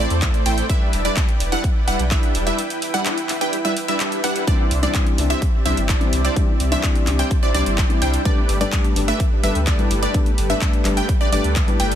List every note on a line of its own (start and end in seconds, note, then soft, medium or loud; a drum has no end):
0.00 0.43 A3 medium
0.00 0.66 A3 medium
0.00 0.43 C4 medium
0.00 0.43 E4 medium
0.00 0.66 A4 medium
0.00 0.43 C5 medium
0.00 0.66 C5 medium
0.00 0.43 D5 loud
0.00 2.55 D5 medium
0.10 0.26 E2 medium
0.10 closed hi-hat soft
0.22 kick loud
0.22 clap loud
0.22 closed hi-hat medium
0.34 closed hi-hat soft
0.46 0.61 A1 medium
0.46 0.66 A3 medium
0.46 0.66 C4 medium
0.46 0.66 E4 medium
0.46 0.66 C5 medium
0.46 0.66 G5 medium
0.46 0.66 G5 loud
0.46 open hi-hat loud
0.58 closed hi-hat medium
0.69 1.02 G3 medium
0.69 1.02 D4 medium
0.69 1.02 E4 medium
0.69 4.44 E4 medium
0.69 1.02 B4 medium
0.69 4.44 B4 medium
0.69 1.02 E5 medium
0.69 1.02 E5 loud
0.69 4.44 G5 medium
0.69 kick loud
0.69 closed hi-hat medium
0.93 1.09 E1 loud
0.93 open hi-hat loud
1.05 1.27 G3 medium
1.05 1.27 D4 medium
1.05 1.27 E4 medium
1.05 1.27 B4 medium
1.05 1.27 D5 medium
1.05 closed hi-hat medium
1.17 kick loud
1.17 clap loud
1.17 closed hi-hat medium
1.29 closed hi-hat soft
1.40 1.56 E1 medium
1.40 open hi-hat loud
1.52 1.66 G3 loud
1.52 1.66 D4 medium
1.52 1.66 E4 medium
1.52 1.66 B4 medium
1.52 1.66 F#5 loud
1.52 closed hi-hat medium
1.64 kick loud
1.64 closed hi-hat medium
1.88 1.95 E1 loud
1.88 2.02 G3 medium
1.88 2.02 D4 medium
1.88 2.02 E4 medium
1.88 2.02 B4 medium
1.88 2.02 F#5 loud
1.88 2.02 F#5 medium
1.88 open hi-hat loud
1.99 2.15 B1 medium
1.99 closed hi-hat medium
2.11 2.44 G3 medium
2.11 2.44 D4 medium
2.11 2.44 E4 medium
2.11 2.44 B4 medium
2.11 2.44 E5 medium
2.11 kick loud
2.11 clap loud
2.11 closed hi-hat medium
2.23 closed hi-hat soft
2.35 2.50 E1 medium
2.35 open hi-hat loud
2.47 2.61 G3 medium
2.47 2.61 D4 medium
2.47 2.61 E4 medium
2.47 2.61 B4 medium
2.47 2.61 E5 medium
2.47 closed hi-hat medium
2.58 8.21 E5 medium
2.58 closed hi-hat medium
2.70 closed hi-hat soft
2.82 open hi-hat loud
2.94 3.16 G3 medium
2.94 3.16 D4 medium
2.94 3.16 E4 medium
2.94 3.16 B4 medium
2.94 3.16 F#5 loud
2.94 3.16 F#5 medium
2.94 closed hi-hat medium
3.06 clap loud
3.06 closed hi-hat medium
3.18 closed hi-hat soft
3.29 clap medium
3.29 open hi-hat loud
3.41 3.55 G3 medium
3.41 3.55 D4 medium
3.41 3.55 E4 medium
3.41 3.55 B4 medium
3.41 3.55 G5 medium
3.41 closed hi-hat medium
3.53 closed hi-hat medium
3.65 3.74 G3 medium
3.65 3.74 D4 medium
3.65 3.74 E4 medium
3.65 3.74 B4 medium
3.65 3.74 E5 medium
3.65 3.74 E5 loud
3.65 closed hi-hat soft
3.77 open hi-hat loud
3.88 4.21 G3 medium
3.88 4.21 D4 medium
3.88 4.21 E4 medium
3.88 4.21 B4 medium
3.88 4.21 E5 medium
3.88 closed hi-hat medium
4.00 clap loud
4.00 closed hi-hat medium
4.12 closed hi-hat soft
4.24 4.45 G3 loud
4.24 4.45 D4 medium
4.24 4.45 E4 medium
4.24 4.45 B4 medium
4.24 4.45 F#5 loud
4.24 open hi-hat loud
4.36 closed hi-hat medium
4.47 4.60 E3 medium
4.47 4.61 G3 medium
4.47 4.80 G3 medium
4.47 8.22 C4 medium
4.47 4.61 C4 medium
4.47 4.80 D4 medium
4.47 4.61 D4 medium
4.47 4.80 E4 medium
4.47 11.95 G4 medium
4.47 4.80 C5 medium
4.47 4.80 D5 medium
4.47 4.80 D5 loud
4.47 8.22 D5 medium
4.47 kick loud
4.47 closed hi-hat medium
4.71 4.87 C2 medium
4.71 open hi-hat loud
4.82 5.15 E3 loud
4.82 5.15 G3 medium
4.82 5.05 G3 medium
4.82 5.16 C4 loud
4.82 5.05 D4 medium
4.82 5.16 D4 loud
4.82 5.05 E4 medium
4.82 5.05 C5 medium
4.82 5.05 D5 medium
4.82 closed hi-hat medium
4.95 kick loud
4.95 clap loud
4.95 closed hi-hat medium
5.07 closed hi-hat soft
5.18 5.34 C2 medium
5.18 5.31 E3 medium
5.18 5.31 G3 medium
5.18 5.32 C4 medium
5.18 5.32 D4 loud
5.18 open hi-hat loud
5.30 5.44 G3 loud
5.30 5.44 D4 medium
5.30 5.44 E4 medium
5.30 5.44 C5 medium
5.30 5.44 E5 loud
5.30 closed hi-hat medium
5.42 kick loud
5.42 closed hi-hat medium
5.65 5.73 C2 loud
5.65 5.78 E3 medium
5.65 5.79 G3 medium
5.65 5.80 G3 medium
5.65 5.79 C4 medium
5.65 5.80 D4 medium
5.65 5.79 D4 medium
5.65 5.80 E4 medium
5.65 5.80 C5 medium
5.65 5.80 E5 loud
5.65 5.80 E5 medium
5.65 open hi-hat loud
5.77 5.93 G1 medium
5.77 closed hi-hat medium
5.89 6.22 G3 medium
5.89 6.22 D4 medium
5.89 6.22 E4 medium
5.89 6.22 C5 medium
5.89 6.22 D5 medium
5.89 kick loud
5.89 clap loud
5.89 closed hi-hat medium
6.00 6.14 E3 medium
6.00 6.14 G3 medium
6.00 6.14 C4 medium
6.00 6.15 E4 loud
6.00 closed hi-hat soft
6.13 6.28 C2 medium
6.13 open hi-hat loud
6.25 6.39 G3 medium
6.25 6.39 D4 medium
6.25 6.39 E4 medium
6.25 6.39 C5 medium
6.25 6.39 D5 medium
6.25 closed hi-hat medium
6.36 6.49 E3 medium
6.36 6.50 G3 medium
6.36 6.50 C4 medium
6.36 6.50 D4 medium
6.36 kick loud
6.36 closed hi-hat medium
6.60 6.76 C2 loud
6.60 open hi-hat loud
6.71 7.04 E3 loud
6.71 7.04 G3 loud
6.71 6.94 G3 medium
6.71 7.05 C4 loud
6.71 6.94 D4 medium
6.71 7.05 D4 loud
6.71 6.94 E4 medium
6.71 6.94 C5 medium
6.71 6.94 E5 loud
6.71 closed hi-hat medium
6.83 kick loud
6.83 clap loud
6.83 closed hi-hat medium
6.95 closed hi-hat soft
7.07 7.23 C2 medium
7.07 7.20 E3 medium
7.07 7.20 G3 medium
7.07 7.21 C4 medium
7.07 7.21 D4 loud
7.07 clap medium
7.07 open hi-hat loud
7.19 7.33 G3 medium
7.19 7.33 D4 medium
7.19 7.33 E4 medium
7.19 7.33 C5 medium
7.19 7.33 G5 loud
7.19 7.33 G5 medium
7.19 closed hi-hat medium
7.31 kick loud
7.31 closed hi-hat medium
7.43 7.52 G3 medium
7.43 7.52 D4 medium
7.43 7.52 E4 medium
7.43 7.52 C5 medium
7.43 7.52 D5 medium
7.54 7.62 C2 loud
7.54 7.67 E3 medium
7.54 7.68 G3 medium
7.54 7.99 G3 loud
7.54 7.68 C4 medium
7.54 7.99 D4 medium
7.54 7.68 D4 medium
7.54 7.99 E4 medium
7.54 7.99 C5 medium
7.54 7.99 D5 loud
7.54 open hi-hat loud
7.66 7.82 G1 medium
7.66 closed hi-hat medium
7.78 kick loud
7.78 clap loud
7.78 closed hi-hat medium
7.89 8.03 E3 loud
7.89 8.03 G3 medium
7.89 8.03 C4 medium
7.89 8.04 E4 loud
7.89 closed hi-hat soft
8.02 8.17 C2 medium
8.02 8.22 G3 medium
8.02 8.22 D4 medium
8.02 8.22 E4 medium
8.02 8.22 C5 medium
8.02 8.22 G5 medium
8.02 8.22 G5 loud
8.02 open hi-hat loud
8.14 closed hi-hat medium
8.25 8.38 G2 medium
8.25 8.38 G3 medium
8.25 11.95 G3 medium
8.25 8.39 A3 medium
8.25 8.58 A3 medium
8.25 8.39 B3 medium
8.25 8.58 D4 medium
8.25 8.39 D4 medium
8.25 8.58 G4 medium
8.25 11.95 A4 medium
8.25 11.95 B4 medium
8.25 8.58 B4 medium
8.25 8.58 D5 medium
8.25 8.58 D5 loud
8.25 kick loud
8.25 closed hi-hat medium
8.49 8.65 G1 loud
8.49 open hi-hat loud
8.60 8.93 G2 loud
8.60 8.93 G3 medium
8.60 8.93 A3 medium
8.60 8.83 A3 medium
8.60 8.94 B3 loud
8.60 8.83 D4 medium
8.60 8.94 D4 loud
8.60 8.83 G4 medium
8.60 8.83 B4 medium
8.60 8.83 D5 medium
8.60 closed hi-hat medium
8.72 kick loud
8.72 clap loud
8.72 closed hi-hat medium
8.84 closed hi-hat soft
8.96 9.12 G1 medium
8.96 9.09 G2 medium
8.96 9.09 G3 medium
8.96 9.09 A3 medium
8.96 9.10 B3 medium
8.96 9.10 D4 loud
8.96 open hi-hat loud
9.08 9.22 A3 loud
9.08 9.22 D4 medium
9.08 9.22 G4 medium
9.08 9.22 B4 medium
9.08 9.22 E5 loud
9.08 closed hi-hat medium
9.20 kick loud
9.20 closed hi-hat medium
9.43 9.51 G1 loud
9.43 9.56 G2 medium
9.43 9.57 G3 medium
9.43 9.58 A3 medium
9.43 9.57 A3 medium
9.43 9.57 B3 medium
9.43 9.58 D4 medium
9.43 9.57 D4 medium
9.43 9.58 G4 medium
9.43 9.58 B4 medium
9.43 9.58 E5 medium
9.43 9.58 E5 loud
9.43 open hi-hat loud
9.55 9.71 D2 medium
9.55 closed hi-hat medium
9.67 10.00 A3 medium
9.67 10.00 D4 medium
9.67 10.00 G4 medium
9.67 10.00 B4 medium
9.67 10.00 D5 medium
9.67 kick loud
9.67 clap loud
9.67 closed hi-hat medium
9.78 9.92 G2 medium
9.78 9.92 G3 medium
9.78 9.92 A3 medium
9.78 9.92 B3 medium
9.78 9.92 E4 loud
9.78 closed hi-hat soft
9.91 10.06 G1 medium
9.91 open hi-hat loud
10.03 10.17 A3 medium
10.03 10.17 D4 medium
10.03 10.17 G4 medium
10.03 10.17 B4 medium
10.03 10.17 D5 medium
10.03 closed hi-hat medium
10.14 10.27 G2 medium
10.14 10.28 G3 medium
10.14 10.28 A3 medium
10.14 10.28 B3 medium
10.14 10.28 D4 loud
10.14 kick loud
10.14 closed hi-hat medium
10.26 closed hi-hat soft
10.38 10.54 G1 loud
10.38 open hi-hat loud
10.49 10.82 G2 loud
10.49 10.82 G3 medium
10.49 10.82 A3 medium
10.49 10.72 A3 medium
10.49 10.83 B3 medium
10.49 10.72 D4 medium
10.49 10.83 D4 loud
10.49 10.72 G4 medium
10.49 10.72 B4 medium
10.49 10.72 E5 loud
10.49 closed hi-hat soft
10.61 kick loud
10.61 clap loud
10.61 closed hi-hat medium
10.73 closed hi-hat soft
10.85 11.01 G1 medium
10.85 10.98 G2 medium
10.85 10.98 G3 medium
10.85 10.98 A3 medium
10.85 10.99 B3 medium
10.85 10.99 D4 loud
10.85 clap medium
10.85 open hi-hat loud
10.97 11.11 A3 medium
10.97 11.11 D4 medium
10.97 11.11 G4 medium
10.97 11.11 B4 medium
10.97 11.11 G5 medium
10.97 closed hi-hat medium
11.09 kick loud
11.09 closed hi-hat medium
11.21 11.30 A3 medium
11.21 11.30 D4 medium
11.21 11.30 G4 medium
11.21 11.30 B4 medium
11.21 11.30 D5 medium
11.32 11.40 G1 loud
11.32 11.45 G2 medium
11.32 11.46 G3 medium
11.32 11.46 A3 medium
11.32 11.77 A3 medium
11.32 11.46 B3 medium
11.32 11.77 D4 medium
11.32 11.46 D4 medium
11.32 11.77 G4 medium
11.32 11.77 B4 medium
11.32 11.77 D5 loud
11.32 open hi-hat loud
11.44 11.60 D2 medium
11.44 closed hi-hat medium
11.56 kick loud
11.56 clap loud
11.56 closed hi-hat medium
11.67 11.81 G2 loud
11.67 11.81 G3 medium
11.67 11.81 A3 medium
11.67 11.81 B3 medium
11.67 11.81 E4 loud
11.67 closed hi-hat soft
11.80 11.95 G1 medium
11.80 11.95 A3 medium
11.80 11.95 D4 medium
11.80 11.95 G4 medium
11.80 11.95 B4 medium
11.80 11.95 G5 loud
11.80 11.95 G5 medium
11.80 open hi-hat loud
11.92 closed hi-hat medium